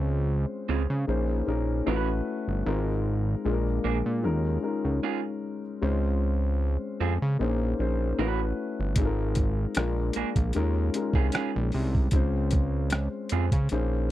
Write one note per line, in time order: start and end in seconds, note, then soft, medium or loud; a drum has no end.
0.00 0.46 C#2 loud
0.00 0.79 G#3 medium
0.00 0.79 C4 medium
0.00 0.79 C#4 medium
0.00 0.79 F4 medium
0.00 0.79 C5 medium
0.69 0.87 C#2 medium
0.69 0.81 C4 medium
0.69 0.82 F4 medium
0.69 0.82 G#4 medium
0.90 1.06 C#3 medium
1.07 1.43 A#1 loud
1.07 1.40 A#3 medium
1.07 1.40 C#4 medium
1.07 1.40 D#4 medium
1.07 1.40 G#4 medium
1.07 1.41 C5 medium
1.47 1.82 A#1 medium
1.47 1.86 A#3 medium
1.47 1.85 C#4 medium
1.47 1.86 D#4 medium
1.47 1.87 G#4 medium
1.47 1.87 A#4 medium
1.86 2.22 A1 medium
1.86 2.52 A3 medium
1.86 2.52 C#4 medium
1.86 2.08 C#4 medium
1.86 2.52 E4 medium
1.86 2.52 F#4 medium
1.86 2.08 F#4 medium
1.86 2.52 B4 medium
1.86 2.08 B4 medium
2.48 2.63 G1 medium
2.66 3.36 G#1 loud
2.66 3.43 G#3 medium
2.66 3.44 C4 medium
2.66 3.44 D#4 medium
2.66 3.44 F4 medium
2.66 3.45 A#4 medium
3.45 3.80 A#1 loud
3.45 4.10 G#3 medium
3.45 4.10 A#3 medium
3.45 4.10 D4 medium
3.45 4.10 F4 medium
3.45 3.52 G#4 medium
3.53 4.14 A#4 medium
3.84 4.03 A#1 medium
3.84 3.97 A#3 medium
3.84 3.97 D4 medium
3.84 3.98 G#4 medium
4.06 4.25 A#2 medium
4.23 4.58 D#2 loud
4.23 4.56 G#3 medium
4.23 4.56 C#4 medium
4.23 4.56 D#4 medium
4.23 4.56 F4 medium
4.23 4.56 A#4 medium
4.62 5.60 G#3 medium
4.62 5.60 C#4 medium
4.62 5.61 D#4 medium
4.62 5.61 F4 medium
4.62 5.61 A#4 medium
4.85 5.00 C#2 medium
5.03 5.19 C#4 medium
5.03 5.20 F4 medium
5.03 5.20 G#4 medium
5.82 6.78 C#2 loud
5.82 7.11 G#3 medium
5.82 7.11 C4 medium
5.82 7.11 C#4 medium
5.82 5.89 D#4 medium
5.82 7.12 C5 medium
5.89 7.14 F4 medium
7.00 7.19 F2 medium
7.00 7.13 C4 medium
7.00 7.13 F4 soft
7.00 7.14 G#4 medium
7.22 7.38 C#3 medium
7.39 7.74 A#1 medium
7.39 7.72 A#3 medium
7.39 7.72 C#4 medium
7.39 7.72 D#4 medium
7.39 7.72 G#4 medium
7.39 7.73 C5 medium
7.79 8.14 A#1 medium
7.79 8.18 A#3 medium
7.79 8.17 C#4 medium
7.79 8.18 D#4 medium
7.79 8.19 G#4 medium
7.79 8.19 C5 medium
8.18 8.53 A1 medium
8.18 8.83 A3 medium
8.18 8.39 C#4 medium
8.18 8.84 C#4 medium
8.18 8.84 E4 medium
8.18 8.40 F#4 medium
8.18 8.84 F#4 medium
8.18 8.84 B4 medium
8.18 8.40 B4 loud
8.80 8.95 G1 medium
8.96 9.67 G#1 loud
8.96 9.75 G#3 medium
8.96 9.76 C4 medium
8.96 9.76 D#4 medium
8.96 9.76 F4 medium
8.96 9.05 A4 medium
8.96 kick medium
8.96 closed hi-hat medium
9.06 9.76 A#4 medium
9.35 kick medium
9.35 closed hi-hat medium
9.75 10.11 A#1 loud
9.75 10.41 G#3 medium
9.75 10.42 A#3 medium
9.75 10.42 D4 medium
9.75 10.42 F4 medium
9.75 10.42 A#4 medium
9.75 cross-stick loud
9.75 closed hi-hat medium
10.13 10.24 A#1 soft
10.13 10.29 A#3 medium
10.13 10.29 D4 medium
10.13 10.29 G#4 medium
10.13 closed hi-hat medium
10.36 10.53 A#1 medium
10.36 kick medium
10.36 closed hi-hat soft
10.53 10.90 D#2 loud
10.53 10.87 G#3 medium
10.53 10.88 C#4 medium
10.53 10.88 D#4 medium
10.53 10.88 F4 medium
10.53 10.88 A#4 medium
10.53 closed hi-hat medium
10.94 11.92 G#3 medium
10.94 11.92 C#4 medium
10.94 11.93 D#4 medium
10.94 11.93 F4 medium
10.94 11.93 A#4 medium
10.94 closed hi-hat medium
11.13 11.31 C2 medium
11.13 11.27 C#4 soft
11.13 11.27 F4 medium
11.13 11.27 G#4 medium
11.13 kick medium
11.32 11.50 C#4 medium
11.32 11.51 F4 medium
11.32 11.51 G#4 medium
11.32 cross-stick loud
11.32 closed hi-hat medium
11.56 11.72 A#1 medium
11.72 12.09 C2 medium
11.72 open hi-hat soft
11.95 kick medium
12.11 13.09 C#2 medium
12.11 13.42 G#3 medium
12.11 13.43 C4 medium
12.11 13.43 C#4 medium
12.11 13.43 F4 medium
12.11 13.43 C5 medium
12.11 kick medium
12.11 closed hi-hat medium
12.51 kick medium
12.51 closed hi-hat medium
12.90 cross-stick loud
12.90 closed hi-hat medium
13.29 13.50 F2 medium
13.29 13.44 C4 medium
13.29 13.45 F4 medium
13.29 13.45 G#4 medium
13.29 closed hi-hat medium
13.52 13.68 C#3 medium
13.52 kick medium
13.52 closed hi-hat soft
13.69 14.11 A#1 loud
13.69 14.04 A#3 medium
13.69 14.04 C#4 medium
13.69 14.04 D#4 medium
13.69 14.04 G#4 medium
13.69 closed hi-hat medium
13.73 14.04 C5 medium